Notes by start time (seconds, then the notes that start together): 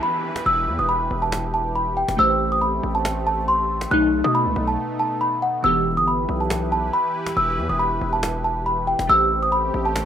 Already playing: E3 B3 E4 G4 B4, downlifter
0.03 B5, cajon slap
0.36 cajon slap
0.46 E1 E6, cajon slap
0.67 E2, cajon slap
0.79 E1 D#6
0.89 B5, cajon slap
1.11 E1, cajon slap
1.18 cajon slap
1.22 A5, cajon slap
1.32 cajon slap
1.54 A5, cajon slap
1.75 B5, cajon slap
1.97 G5, cajon slap
2.08 E1, cajon slap
2.17 A1 A3 C4 G4 C5 E6
2.40 cajon slap
2.46 cajon slap
2.52 D#6, cajon slap
2.57 cajon slap
2.61 B5, cajon slap
2.83 A1, cajon slap
2.91 cajon slap
2.95 A5, cajon slap
3.05 cajon slap
3.19 cajon slap
3.27 A5, cajon slap
3.34 cajon slap
3.41 cajon slap
3.48 C6, cajon slap
3.81 cajon slap
3.90 B1 B2 A3 B3 D#4 F#6, cajon slap
4.13 cajon slap
4.24 B2 D#6
4.35 B5, cajon slap
4.46 C2
4.56 B1, cajon slap
4.68 A5, cajon slap
5.00 A5
5.21 B5
5.42 F#5
5.63 E1 E3 B3 E4 G4 B4 E6, cajon slap
5.86 cajon slap
5.91 cajon slap
5.97 G1 D#6, cajon slap
6.02 cajon slap
6.08 B5, cajon slap
6.29 B1, cajon slap
6.36 cajon slap
6.40 A5, cajon slap
6.50 cajon slap
6.58 cajon slap
6.65 cajon slap
6.72 A5, cajon slap
6.79 cajon slap
6.86 cajon slap
6.93 B5, cajon slap
7.26 cajon slap
7.37 E1 E6, cajon slap
7.58 E2, cajon slap
7.69 E1 D#6
7.79 B5, cajon slap
8.01 E1, cajon slap
8.09 cajon slap
8.13 A5, cajon slap
8.23 cajon slap
8.44 A5, cajon slap
8.66 B5, cajon slap
8.87 G5, cajon slap
8.99 E1, cajon slap
9.07 A1 A3 C4 G4 C5 E6, cajon slap
9.31 cajon slap
9.37 cajon slap
9.42 D#6, cajon slap
9.47 cajon slap
9.52 B5, cajon slap
9.74 A1, cajon slap
9.81 cajon slap
9.85 A5, cajon slap
9.96 cajon slap